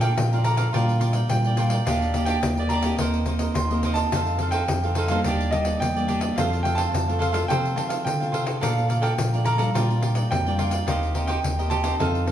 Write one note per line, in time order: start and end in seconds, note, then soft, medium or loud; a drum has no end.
0.00 0.16 A#2 medium
0.00 0.27 A3 medium
0.00 0.27 D4 medium
0.00 0.27 F4 medium
0.00 0.12 A4 medium
0.00 0.12 D5 medium
0.00 0.13 F5 medium
0.00 0.46 G5 medium
0.00 0.13 A#5 medium
0.00 pandeiro medium
0.17 0.72 F2 medium
0.17 0.66 A#2 medium
0.17 pandeiro medium
0.32 0.71 A3 medium
0.32 0.71 D4 medium
0.32 0.71 F4 medium
0.32 0.44 D5 soft
0.32 0.44 F5 soft
0.32 0.45 A#5 soft
0.32 pandeiro soft
0.44 0.56 A4 medium
0.44 0.56 D5 medium
0.44 0.56 F5 medium
0.44 1.26 A#5 loud
0.44 0.57 A#5 medium
0.44 pandeiro medium
0.57 0.68 A4 medium
0.57 0.68 D5 medium
0.57 0.68 F5 medium
0.57 0.69 A#5 medium
0.57 pandeiro medium
0.73 1.28 A#2 medium
0.73 1.23 A#2 medium
0.73 0.91 G3 medium
0.73 0.91 D4 medium
0.73 0.99 F4 medium
0.73 0.91 F4 medium
0.73 1.00 A#4 medium
0.73 1.00 D5 medium
0.73 1.01 G5 medium
0.73 pandeiro medium
0.89 pandeiro soft
1.00 1.18 G3 soft
1.00 1.19 D4 medium
1.00 1.14 F4 soft
1.00 1.19 F4 medium
1.00 1.15 A#4 soft
1.00 1.14 D5 medium
1.00 1.13 G5 soft
1.00 pandeiro medium
1.13 1.44 A#4 soft
1.13 1.43 D5 soft
1.13 1.43 G5 medium
1.13 pandeiro medium
1.29 1.84 A#2 medium
1.29 1.79 A#2 loud
1.29 1.54 G3 medium
1.29 1.54 D4 soft
1.29 1.55 F4 medium
1.29 1.83 G5 medium
1.29 pandeiro medium
1.44 1.57 A#4 soft
1.44 1.58 D5 soft
1.44 1.58 G5 soft
1.44 pandeiro soft
1.57 1.76 G3 medium
1.57 1.76 D4 medium
1.57 1.71 F4 medium
1.57 1.77 F4 medium
1.57 1.72 A#4 medium
1.57 1.71 D5 medium
1.57 1.70 G5 medium
1.57 pandeiro medium
1.70 1.86 A#4 soft
1.70 1.85 D5 soft
1.70 1.85 G5 medium
1.70 pandeiro medium
1.86 2.35 D#2 loud
1.86 2.41 D#3 medium
1.86 2.04 A#3 medium
1.86 2.14 D4 medium
1.86 2.04 D4 medium
1.86 2.04 G4 medium
1.86 2.15 G4 medium
1.86 2.15 D5 medium
1.86 2.15 D#5 medium
1.86 2.30 F5 medium
1.86 pandeiro medium
2.02 pandeiro soft
2.14 2.52 A#3 medium
2.14 2.53 D4 medium
2.14 2.27 D4 soft
2.14 2.53 G4 medium
2.14 2.27 G4 medium
2.14 2.28 D5 medium
2.14 2.28 D#5 soft
2.14 pandeiro medium
2.25 2.38 D4 medium
2.25 2.38 G4 medium
2.25 2.38 D5 medium
2.25 2.38 D#5 medium
2.25 2.71 G5 medium
2.25 pandeiro medium
2.43 2.91 D#2 medium
2.43 2.97 A#2 medium
2.43 pandeiro medium
2.57 2.81 A#3 medium
2.57 2.81 D4 medium
2.57 2.82 G4 medium
2.57 2.70 G4 soft
2.57 2.71 D5 medium
2.57 2.71 D#5 soft
2.57 pandeiro soft
2.69 2.82 D4 medium
2.69 2.83 G4 medium
2.69 2.83 D#5 medium
2.69 3.51 A#5 loud
2.69 pandeiro medium
2.73 2.84 D5 medium
2.82 3.22 A#3 medium
2.82 3.22 C4 medium
2.82 2.94 D4 medium
2.82 3.22 G4 medium
2.82 2.94 G4 medium
2.82 2.94 D5 medium
2.82 2.94 D#5 medium
2.82 pandeiro medium
2.98 3.48 D#2 medium
2.98 3.53 D#3 medium
2.98 3.25 D#4 medium
2.98 3.27 A#4 medium
2.98 3.27 C5 medium
2.98 3.28 D#5 medium
2.98 pandeiro medium
3.14 pandeiro soft
3.26 3.54 A#3 medium
3.26 3.54 C4 medium
3.26 3.40 D#4 soft
3.26 3.54 G4 medium
3.26 3.41 A#4 soft
3.26 3.40 C5 medium
3.26 3.39 D#5 medium
3.26 pandeiro medium
3.39 3.69 A#4 soft
3.39 3.69 C5 soft
3.39 3.68 D#5 soft
3.39 pandeiro medium
3.54 4.04 D#2 medium
3.54 4.10 D#3 medium
3.54 3.99 C6 medium
3.54 pandeiro medium
3.71 4.08 A#3 medium
3.71 4.08 C4 medium
3.71 4.08 G4 medium
3.71 3.83 A#4 soft
3.71 3.84 C5 soft
3.71 3.84 D#5 medium
3.71 pandeiro soft
3.83 3.97 D#4 medium
3.83 3.97 A#4 medium
3.83 3.96 C5 medium
3.83 3.95 D#5 medium
3.83 pandeiro medium
3.94 4.11 C5 soft
3.94 4.10 D#5 soft
3.94 4.54 A5 loud
3.94 pandeiro medium
3.98 4.11 A#4 soft
4.12 4.60 F2 medium
4.12 4.66 F3 medium
4.12 4.29 C4 medium
4.12 4.29 D#4 medium
4.12 4.39 D#4 medium
4.12 4.29 A4 medium
4.12 4.40 A4 medium
4.12 4.40 C5 medium
4.12 4.41 F5 medium
4.12 pandeiro medium
4.27 pandeiro soft
4.39 4.66 C4 medium
4.39 4.66 D#4 medium
4.39 4.52 D#4 soft
4.39 4.67 A4 medium
4.39 4.52 A4 medium
4.39 4.52 C5 medium
4.39 4.53 F5 medium
4.39 pandeiro medium
4.51 4.63 D#4 medium
4.51 4.63 A4 medium
4.51 4.63 C5 medium
4.51 4.63 F5 medium
4.51 5.05 G5 medium
4.51 pandeiro medium
4.68 5.17 F2 medium
4.68 pandeiro medium
4.83 5.06 C4 medium
4.83 5.07 D#4 medium
4.83 5.07 A4 medium
4.83 4.96 A4 soft
4.83 4.97 C5 soft
4.83 4.96 F5 medium
4.83 pandeiro soft
4.95 5.09 D#4 medium
4.95 5.09 A4 medium
4.95 5.10 C5 medium
4.95 5.10 F5 medium
4.95 pandeiro medium
5.08 5.47 G3 medium
5.08 5.48 A#3 medium
5.08 5.48 D4 medium
5.08 5.19 D#4 medium
5.08 5.20 A4 medium
5.08 5.20 C5 medium
5.08 5.53 F5 medium
5.08 5.20 F5 medium
5.08 pandeiro medium
5.24 5.73 D#2 loud
5.24 5.79 D#3 medium
5.24 5.51 D4 medium
5.24 5.52 G4 medium
5.24 5.53 D#5 medium
5.24 pandeiro medium
5.29 5.54 D5 medium
5.40 pandeiro soft
5.51 5.91 G3 medium
5.51 5.91 A#3 medium
5.51 5.66 D4 soft
5.51 5.91 D4 medium
5.51 5.66 G4 medium
5.51 5.78 D#5 medium
5.51 5.65 D#5 medium
5.51 pandeiro medium
5.55 5.64 D5 medium
5.65 5.94 G4 soft
5.65 5.93 D5 soft
5.65 5.94 D#5 soft
5.65 pandeiro medium
5.80 6.29 E2 medium
5.80 6.35 A#2 medium
5.80 6.39 G5 medium
5.80 pandeiro medium
5.96 6.34 G3 medium
5.96 6.34 A#3 medium
5.96 6.34 D4 medium
5.96 6.08 G4 soft
5.96 6.09 D5 soft
5.96 6.08 D#5 soft
5.96 pandeiro soft
6.08 6.22 D4 medium
6.08 6.22 G4 medium
6.08 6.20 D5 medium
6.08 6.21 D#5 medium
6.08 pandeiro medium
6.21 6.36 G4 soft
6.21 6.36 D5 soft
6.21 6.36 D#5 soft
6.21 pandeiro medium
6.36 6.86 F2 medium
6.36 6.91 F3 medium
6.36 6.62 A3 medium
6.36 6.62 C4 medium
6.36 6.63 F4 medium
6.36 6.62 F4 medium
6.36 6.64 A4 medium
6.36 6.65 C5 medium
6.36 6.66 F5 medium
6.36 pandeiro medium
6.53 pandeiro soft
6.63 7.03 A3 medium
6.63 7.03 C4 medium
6.63 6.76 F4 soft
6.63 7.04 F4 medium
6.63 6.77 A4 soft
6.63 6.77 C5 medium
6.63 6.78 F5 medium
6.63 6.79 G5 medium
6.63 pandeiro medium
6.75 6.88 F4 medium
6.75 6.88 A4 medium
6.75 6.88 C5 medium
6.75 6.88 F5 medium
6.75 7.17 A5 loud
6.75 pandeiro medium
6.94 7.42 F2 medium
6.94 7.48 C3 medium
6.94 pandeiro medium
7.08 7.32 A3 medium
7.08 7.32 C4 medium
7.08 7.32 F4 medium
7.08 7.19 A4 soft
7.08 7.19 C5 soft
7.08 7.20 F5 soft
7.08 pandeiro soft
7.19 7.31 F4 medium
7.19 7.32 A4 medium
7.19 7.32 C5 medium
7.19 7.26 F5 medium
7.19 7.33 F5 medium
7.19 pandeiro medium
7.32 7.45 A3 medium
7.32 7.45 C4 medium
7.32 7.43 F4 medium
7.32 7.45 F4 medium
7.32 7.44 A4 medium
7.32 7.44 C5 medium
7.32 7.44 F5 medium
7.32 pandeiro medium
7.48 7.74 C3 loud
7.48 8.04 F3 medium
7.48 7.74 A3 medium
7.48 7.74 C4 medium
7.48 7.75 F4 medium
7.48 7.74 F4 medium
7.48 7.76 A4 medium
7.48 7.76 C5 medium
7.48 7.77 F5 medium
7.48 7.78 G5 loud
7.48 pandeiro medium
7.65 pandeiro soft
7.76 8.03 D#3 medium
7.76 8.04 A3 medium
7.76 8.04 C4 medium
7.76 7.90 F4 soft
7.76 8.05 F4 medium
7.76 7.90 A4 soft
7.76 7.89 C5 medium
7.76 7.88 F5 soft
7.76 7.83 A5 medium
7.76 pandeiro medium
7.89 8.19 A4 soft
7.89 8.18 C5 soft
7.89 8.18 F5 soft
7.89 pandeiro medium
8.05 8.60 C3 medium
8.05 8.31 D3 medium
8.05 8.64 G5 medium
8.05 pandeiro medium
8.20 8.59 A3 medium
8.20 8.59 C4 medium
8.20 8.59 F4 medium
8.20 8.32 A4 soft
8.20 8.33 C5 soft
8.20 8.33 F5 soft
8.20 pandeiro soft
8.32 8.59 C3 medium
8.32 8.46 F4 medium
8.32 8.46 A4 medium
8.32 8.45 C5 medium
8.32 8.44 F5 medium
8.32 pandeiro medium
8.45 8.60 A4 soft
8.45 8.61 C5 soft
8.45 8.60 F5 soft
8.45 pandeiro medium
8.61 9.16 A#2 medium
8.61 9.11 A#2 medium
8.61 8.79 A3 medium
8.61 8.79 D4 medium
8.61 8.80 F4 medium
8.61 8.87 A4 medium
8.61 8.88 D5 medium
8.61 9.06 F5 medium
8.61 8.88 F5 medium
8.61 8.89 A#5 medium
8.61 pandeiro medium
8.78 pandeiro soft
8.88 9.28 A3 medium
8.88 9.28 D4 medium
8.88 9.28 F4 medium
8.88 9.00 A4 medium
8.88 9.01 D5 medium
8.88 9.01 F5 medium
8.88 9.02 A#5 medium
8.88 pandeiro medium
9.01 9.12 A4 medium
9.01 9.13 D5 medium
9.01 9.13 F5 medium
9.01 9.43 G5 medium
9.01 9.13 A#5 medium
9.01 pandeiro medium
9.18 9.67 A#2 medium
9.18 9.73 F3 medium
9.18 pandeiro medium
9.32 9.57 A3 medium
9.32 9.58 D4 medium
9.32 9.58 F4 medium
9.32 9.44 D5 soft
9.32 9.45 F5 soft
9.32 9.46 A#5 soft
9.32 pandeiro soft
9.44 9.57 A4 medium
9.44 9.57 D5 medium
9.44 9.58 F5 medium
9.44 10.34 A#5 loud
9.44 9.58 A#5 medium
9.44 pandeiro medium
9.58 9.98 G3 medium
9.58 9.98 D4 medium
9.58 9.98 F4 medium
9.58 9.69 A4 medium
9.58 9.69 D5 medium
9.58 9.69 F5 medium
9.58 9.70 A#5 medium
9.58 pandeiro medium
9.74 10.29 A#2 medium
9.74 10.23 A#2 medium
9.74 10.00 F4 medium
9.74 10.01 A#4 medium
9.74 10.02 D5 medium
9.74 10.02 G5 medium
9.74 pandeiro medium
9.91 pandeiro soft
10.01 10.29 G3 medium
10.01 10.30 D4 medium
10.01 10.16 F4 soft
10.01 10.30 F4 medium
10.01 10.16 A#4 soft
10.01 10.15 D5 soft
10.01 10.14 G5 soft
10.01 pandeiro medium
10.15 10.44 A#4 soft
10.15 10.44 D5 soft
10.15 10.43 G5 soft
10.15 pandeiro medium
10.31 10.80 F2 medium
10.31 10.85 A#2 medium
10.31 10.84 G5 medium
10.31 pandeiro medium
10.46 10.84 G3 medium
10.46 10.84 D4 medium
10.46 10.85 F4 medium
10.46 10.58 A#4 soft
10.46 10.59 D5 soft
10.46 10.59 G5 medium
10.46 pandeiro soft
10.59 10.72 F4 medium
10.59 10.72 A#4 medium
10.59 10.71 D5 medium
10.59 10.70 G5 medium
10.59 pandeiro medium
10.71 10.87 A#4 soft
10.71 10.86 D5 soft
10.71 10.86 G5 medium
10.71 pandeiro medium
10.87 11.36 D#2 loud
10.87 11.42 D#3 medium
10.87 11.05 C4 medium
10.87 11.13 D#4 medium
10.87 11.14 G4 medium
10.87 11.05 G4 soft
10.87 11.05 A#4 medium
10.87 11.15 C5 medium
10.87 11.16 D#5 medium
10.87 11.27 F5 medium
10.87 pandeiro medium
11.03 pandeiro soft
11.14 11.54 C4 medium
11.14 11.27 D#4 medium
11.14 11.28 G4 medium
11.14 11.54 G4 medium
11.14 11.54 A#4 medium
11.14 11.28 C5 medium
11.14 11.28 D#5 medium
11.14 pandeiro medium
11.27 11.38 D#4 medium
11.27 11.39 G4 medium
11.27 11.39 C5 medium
11.27 11.39 D#5 medium
11.27 11.68 G5 medium
11.27 pandeiro medium
11.44 11.92 D#2 medium
11.44 11.98 A#2 medium
11.44 pandeiro medium
11.58 11.82 C4 medium
11.58 11.82 G4 medium
11.58 11.70 G4 soft
11.58 11.83 A#4 medium
11.58 11.70 C5 soft
11.58 11.71 D#5 soft
11.58 pandeiro soft
11.70 11.82 D#4 medium
11.70 11.82 G4 medium
11.70 11.83 C5 medium
11.70 11.83 D#5 medium
11.70 12.32 A5 loud
11.70 pandeiro medium
11.83 12.23 C4 medium
11.83 11.94 D#4 medium
11.83 12.23 D#4 medium
11.83 11.94 G4 medium
11.83 12.23 A4 medium
11.83 11.94 C5 medium
11.83 11.95 D#5 medium
11.83 pandeiro medium
11.99 12.32 F2 loud
11.99 12.32 F3 medium
11.99 12.25 D#4 medium
11.99 12.26 A4 medium
11.99 12.27 C5 medium
11.99 12.27 F5 medium
11.99 pandeiro medium
12.15 pandeiro soft
12.26 12.32 C4 medium
12.26 12.32 D#4 soft
12.26 12.32 D#4 medium
12.26 12.32 A4 soft
12.26 12.32 A4 medium
12.26 12.32 C5 medium
12.26 12.32 F5 medium
12.26 pandeiro medium